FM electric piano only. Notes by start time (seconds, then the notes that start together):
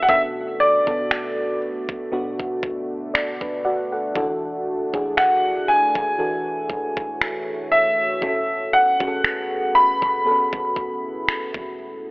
Already playing: D3 E4 F#4 G#4
0.08 B2 B3 D4 A4
0.86 B2 B3 D4 A4
2.11 B2 B3 D4 F#4
3.14 D5
3.41 D4 B4
3.65 F#4 D5 F#5
3.92 A4 F#5
4.15 E3 D4 F#4 A4
4.93 E3 D4 F#4 G#4
6.18 E3 D4 F#4 A4
8.21 C#4 F#4 A4
8.99 C#4 F#4 G#4
9.08 A4
10.25 B3 F#4 A4
10.31 C#4